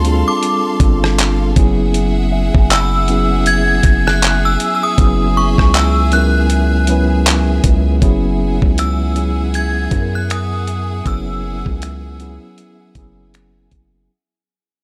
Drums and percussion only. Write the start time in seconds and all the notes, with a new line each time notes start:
0.05 closed hi-hat
0.43 closed hi-hat
0.80 kick, closed hi-hat
1.04 cross-stick
1.19 clap, closed hi-hat
1.56 kick, closed hi-hat
1.94 closed hi-hat
2.55 kick
2.70 clap, closed hi-hat
3.08 closed hi-hat
3.46 closed hi-hat
3.83 kick, closed hi-hat
4.08 cross-stick
4.22 clap, closed hi-hat
4.60 closed hi-hat
4.98 kick, closed hi-hat
5.58 kick, cross-stick
5.74 clap, closed hi-hat
6.12 closed hi-hat
6.50 closed hi-hat
6.87 closed hi-hat
7.26 clap, closed hi-hat
7.64 kick, closed hi-hat
8.02 kick, closed hi-hat
8.62 kick
8.78 finger snap, closed hi-hat
9.16 closed hi-hat
9.54 closed hi-hat
9.91 kick, closed hi-hat
10.30 finger snap, closed hi-hat
10.67 closed hi-hat
11.06 kick, closed hi-hat
11.66 kick
11.82 finger snap, closed hi-hat
12.20 closed hi-hat
12.58 closed hi-hat
12.95 kick, closed hi-hat
13.34 finger snap, closed hi-hat
13.71 kick, closed hi-hat